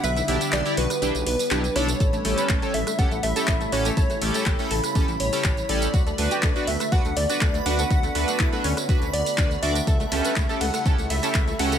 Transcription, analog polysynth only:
\new Staff \with { instrumentName = "Analog polysynth" } { \time 4/4 \key a \mixolydian \tempo 4 = 122 r8 <d' e' g'>8. <d' e' g'>16 r8 <d' e' g'>16 r8. <d' e' g'>16 r16 <d' e' a'>16 r16 | r8 <cis' g' a'>8. <cis' g' a'>16 r8 <cis' g' a'>16 r8 <cis' g' a'>16 r8 <cis' g' a'>16 r16 | r8 <cis' g' a'>8. <cis' g' a'>16 r8 <cis' g' a'>16 r8 <cis' g' a'>16 r8 <cis' g' a'>16 r16 | r8 <d' fis' b'>8. <d' fis' b'>16 r8 <d' fis' b'>16 r8 <d' fis' b'>16 r8 <d' fis' b'>16 r16 |
r8 <d' fis' b'>8. <d' fis' b'>16 r8 <d' fis' b'>16 r8. <d' fis' b'>16 r16 <d' fis' d''>16 r16 | r8 <cis' g' a'>8. <cis' g' a'>16 r8 <cis' g' a'>16 r8 <cis' g' a'>16 r8 <cis' g' a'>16 r16 | }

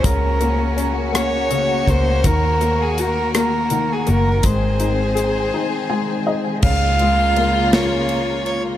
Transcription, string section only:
\new Staff \with { instrumentName = "String section" } { \time 6/8 \key des \major \tempo 4. = 55 << { <bes ges'>2.~ | <bes ges'>2. | <c' aes'>2. | <bes f'>2. | } \\ { des'2. | ees2.~ | ees2. | des2. | } >> }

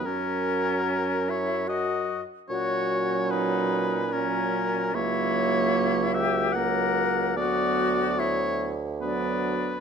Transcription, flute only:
\new Staff \with { instrumentName = "Flute" } { \time 3/4 \key fis \mixolydian \tempo 4 = 74 cis'4. e'8 fis'8 r8 | fis'4 dis'4 cis'4 | \key b \minor e'4. g'8 ais'4 | fis'4 e'8 r8 d'4 | }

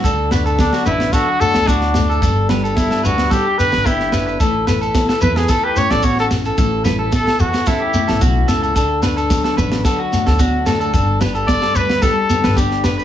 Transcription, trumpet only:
\new Staff \with { instrumentName = "Trumpet" } { \time 4/4 \key d \major \tempo 4 = 110 r4 d'8 e'8 fis'8 a'8 d'4 | r4 e'8 fis'8 g'8 b'8 e'4 | r4. b'16 gis'16 a'16 b'16 cis''16 d''16 cis''16 a'16 r8 | r4 a'8 fis'8 e'4 r4 |
r1 | r4 d''8 b'8 a'4 r4 | }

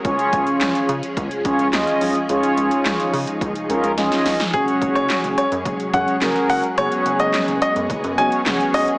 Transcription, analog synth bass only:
\new Staff \with { instrumentName = "Analog synth bass" } { \clef bass \time 4/4 \key cis \mixolydian \tempo 4 = 107 cis,16 r16 cis,16 r16 cis,16 r16 cis16 r16 cis,16 r16 cis,16 cis,16 dis,16 r16 b,,16 r16 | cis,16 r16 cis,16 r16 cis,16 r16 cis16 r16 cis,16 r16 cis,16 cis,16 cis,16 r16 cis,16 r16 | fis,,16 r16 fis,,16 fis,,16 r16 fis,,16 r16 fis,16 fis,,16 r16 fis,16 r16 fis,,16 r16 fis,,16 r16 | fis,,16 r16 fis,,16 fis,,16 r16 fis,,16 r16 fis,16 fis,,16 fis,16 fis,,16 r16 fis,,16 r16 b,,16 r16 | }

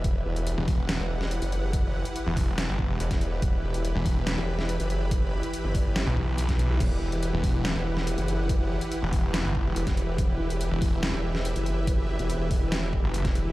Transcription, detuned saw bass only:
\new Staff \with { instrumentName = "Detuned saw bass" } { \clef bass \time 4/4 \key e \minor \tempo 4 = 142 r4 r16 e,,4 r4. r16 | r4 r16 e,,4 g,,8 e,,16 r4 | r4 r16 e,,4 r4. r16 | r2 r16 b,,4.~ b,,16 |
r4 r16 e,,4 r4. r16 | r4 r16 e,,4 g,,8 e,,16 r4 | r4 r16 e,,4 r4. r16 | r2 r8. fis,,8 r8. | }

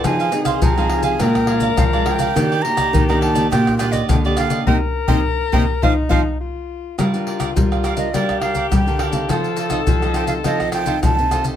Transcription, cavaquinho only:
\new Staff \with { instrumentName = "Cavaquinho" } { \time 4/4 \key f \mixolydian \tempo 4 = 104 <ees' aes' c'' f''>16 <aes' c'' f''>16 r16 <aes' c'' f''>16 <ees' aes' c'' f''>16 <aes' c'' f''>8 <aes' c'' f''>16 <aes' bes' d'' f''>16 r16 <aes' bes' d'' f''>16 <bes' d'' f''>8 <bes' d'' f''>16 <aes' bes' d'' f''>16 <bes' d'' f''>16 | <d' g' d'' ees''>16 <g' d'' ees''>16 r16 <g' d'' ees''>16 <d' g' d'' ees''>16 <g' d'' ees''>8 <g' d'' ees''>16 <d' g' d'' ees''>16 r16 <d' g' d'' ees''>16 <g' d'' ees''>8 <g' d'' ees''>16 <d' g' d'' ees''>16 <g' d'' ees''>16 | <bes' c'' ees''>16 r8 <bes' c'' ees''>16 r8 <bes' c'' ees''>16 r16 <c'' ees'' f''>16 r16 <c'' ees'' f''>16 r4 r16 | \key g \minor <g' bes' d'' f''>8 <g' bes' d'' f''>16 <g' bes' d'' f''>16 r16 <bes' d'' f''>16 <g' bes' d'' f''>16 <bes' d'' f''>16 <g' bes' d'' f''>16 <bes' d'' f''>16 <g' bes' d'' f''>16 <g' bes' d'' f''>16 r8 <g' bes' d'' f''>16 <bes' d'' f''>16 |
<f' a' c'' ees''>8 <f' a' c'' ees''>16 <f' a' c'' ees''>16 r16 <a' c'' ees''>16 <f' a' c'' ees''>16 <a' c'' ees''>16 <f' a' c'' ees''>16 <a' c'' ees''>16 <f' a' c'' ees''>16 <f' a' c'' ees''>16 r8 <f' a' c'' ees''>16 <a' c'' ees''>16 | }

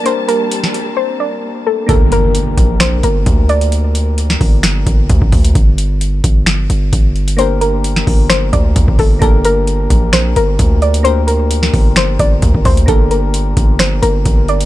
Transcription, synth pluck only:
\new Staff \with { instrumentName = "Synth pluck" } { \time 4/4 \key g \minor \tempo 4 = 131 c''8 bes'4. c''8 d''4 a'8 | a'8 bes'4. c''8 bes'4 d''8 | r1 | r1 |
c''8 bes'4. c''8 d''4 a'8 | a'8 bes'4. c''8 bes'4 d''8 | c''8 bes'4. c''8 d''4 c''8 | a'8 bes'4. c''8 bes'4 d''8 | }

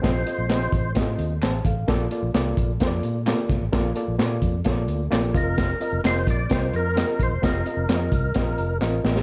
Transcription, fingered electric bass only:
\new Staff \with { instrumentName = "Fingered electric bass" } { \clef bass \time 4/4 \key bes \major \tempo 4 = 130 bes,,8 r16 bes,,8. a,,8 a,8 ees,8 a,,8 a,,8 | bes,,8 r16 bes,,16 c,8 bes,,8 f,8 bes,8. r16 c,16 a,,16 | bes,,8 r16 bes,,16 bes,8 f,8 bes,,8 d,8 bes,,8 f,,8~ | f,,8 r16 f,,16 f,,8 bes,,8 c,8 f,8. r16 bes,,16 e,,16 |
f,,8 r16 f,,16 f,8 c,8 bes,,8 f,,8 a,,8 a,,8 | }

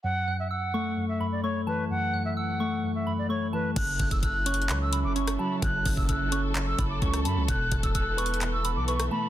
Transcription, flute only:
\new Staff \with { instrumentName = "Flute" } { \time 4/4 \key fis \minor \tempo 4 = 129 fis''8. e''16 fis''4~ fis''16 e''8 d''16 cis''8 b'8 | fis''8. e''16 fis''4~ fis''16 e''8 d''16 cis''8 b'8 | fis'''8. e'''16 fis'''4~ fis'''16 e'''8 d'''16 cis'''8 b''8 | fis'''8. e'''16 fis'''4~ fis'''16 e'''8 d'''16 cis'''8 b''8 |
fis'''8. e'''16 fis'''4~ fis'''16 e'''8 d'''16 cis'''8 b''8 | }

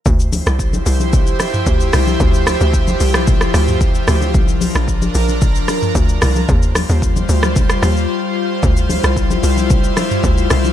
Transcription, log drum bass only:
\new Staff \with { instrumentName = "Log drum bass" } { \clef bass \time 4/4 \key d \minor \tempo 4 = 112 d,8. c,8. c,4 r8 d,8 c,8 | d,8. d,8. c,4 d,4 d,8 | c,8. bes,,8. bes,,4 r8 d,8 c,8 | ees,8. ees,8. d,4 ees,8 r4 |
d,8. c,8. c,4 r8 d,8 c,8 | }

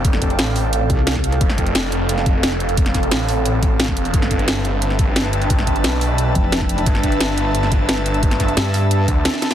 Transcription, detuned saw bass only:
\new Staff \with { instrumentName = "Detuned saw bass" } { \clef bass \time 4/4 \key g \mixolydian \tempo 4 = 176 f,,4 a,,4. r4. | f,,4 f,,2.~ | f,,4 a,,2. | g,,4 g,,2.~ |
g,,4 b,,4. r4. | g,,4 g,,2.~ | g,,4 r4. d,8 r4 | }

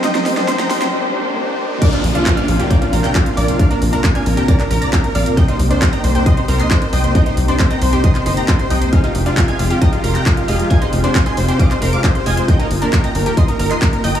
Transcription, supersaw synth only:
\new Staff \with { instrumentName = "Supersaw synth" } { \time 4/4 \key bes \mixolydian \tempo 4 = 135 <ees'' g''>16 c''16 r16 c''16 c''16 <g'' bes''>16 c''16 c''16 r2 | <bes' d''>16 f'16 r16 f'16 f'16 <d'' f''>16 f'16 f'16 <bes' g''>16 f'16 f'16 <bes' g''>16 f'16 f'16 <bes' d''>16 f'16 | <d'' f''>16 bes'16 r16 bes'16 bes'16 <f'' aes''>16 bes'16 bes'16 <d'' bes''>16 bes'16 bes'16 <d'' bes''>16 bes'16 bes'16 <d'' f''>16 bes'16 | <ees'' g''>16 c''16 r16 c''16 c''16 <g'' bes''>16 c''16 c''16 <ees'' c'''>16 c''16 c''16 <ees'' c'''>16 c''16 c''16 <ees'' g''>16 c''16 |
<ees'' g''>16 c''16 r16 c''16 c''16 <g'' bes''>16 c''16 c''16 <ees'' c'''>16 c''16 c''16 <g'' bes''>16 c''16 c''16 <ees'' g''>16 c''16 | <aes' f''>16 f'16 r16 f'16 f'16 <f'' aes''>16 f'16 f'16 <g'' bes''>16 f'16 f'16 <g'' bes''>16 f'16 f'16 <aes' f''>16 f'16 | <f'' aes''>16 c''16 r16 c''16 c''16 <aes'' c'''>16 c''16 c''16 <f'' d'''>16 c''16 c''16 <f'' d'''>16 c''16 c''16 <f'' aes''>16 c''16 | <ees'' g''>16 bes'16 r16 bes'16 bes'16 <g'' bes''>16 bes'16 bes'16 <ees'' c'''>16 bes'16 bes'16 <ees'' c'''>16 bes'16 bes'16 <ees'' g''>16 bes'16 | }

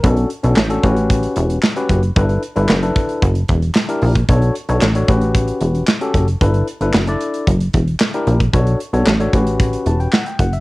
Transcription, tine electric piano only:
\new Staff \with { instrumentName = "Tine electric piano" } { \time 4/4 \key b \minor \tempo 4 = 113 << { ais'16 r2. r8. | r1 | r1 | r1 |
r2 r8 a''16 g''16 fis''16 g''16 fis''16 e''16 | } \\ { <cis' d' fis' a'>8 r16 <cis' d' fis' a'>16 r16 <cis' d' fis' a'>16 <cis' fis' g' b'>4. r16 <cis' fis' g' b'>8 r16 | <d' e' a' b'>8 r16 <d' e' a' b'>16 r16 <d' e' a' b'>8. r4 r16 <d' e' g' ais'>8 r16 | <d' fis' a' cis''>8 r16 <d' fis' a' cis''>16 r16 <d' fis' a' cis''>16 <cis' fis' g' b'>4. r16 <cis' fis' g' a'>8 r16 | <d' e' a' b'>8 r16 <d' e' a' b'>16 r16 <d' e' a' d''>8. r4 r16 <d' e' g' ais'>8 r16 |
<d' fis' a' cis''>8 r16 <d' fis' a' cis''>16 r16 <d' fis' a' cis''>16 <cis' fis' g' b'>4. r4 | } >> }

